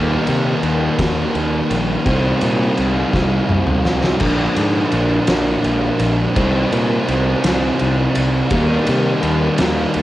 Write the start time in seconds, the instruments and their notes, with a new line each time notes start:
Already playing: fingered electric bass D#2, distorted electric guitar D#3 G3 A#3 D#4
0.27 fingered electric bass C3, ride
0.63 fingered electric bass D#2, ride
0.98 fingered electric bass D#2, kick, snare, ride
1.35 fingered electric bass D#2, ride
1.71 fingered electric bass A#1, ride
2.05 fingered electric bass C2, distorted electric guitar C3 G3 C4 D#4, kick, ride
2.41 fingered electric bass A#2, ride
2.77 fingered electric bass C2, ride
3.13 fingered electric bass C2, kick, snare
3.49 fingered electric bass C2, mid tom
3.67 mid tom
3.85 fingered electric bass C2, snare
4.04 snare
4.20 fingered electric bass A#1, distorted electric guitar A#2 D3 F3 A#3 D4, kick, crash
4.56 fingered electric bass G#2, ride
4.92 fingered electric bass A#1, ride
5.27 fingered electric bass A#1, snare, ride
5.64 fingered electric bass A#1, ride
5.99 fingered electric bass A#1, ride
6.35 fingered electric bass C2, distorted electric guitar C3 G3 C4 D#4, kick, ride
6.72 fingered electric bass A#2, ride
7.08 fingered electric bass C2, ride
7.44 fingered electric bass C2, snare, ride
7.79 fingered electric bass C2, ride
8.15 fingered electric bass C2, ride
8.50 fingered electric bass D#2, distorted electric guitar D#3 G3 A#3 D#4, kick, ride
8.87 fingered electric bass C3, ride
9.23 fingered electric bass D#2, ride
9.58 fingered electric bass D#2, snare, ride
9.94 fingered electric bass D#2, ride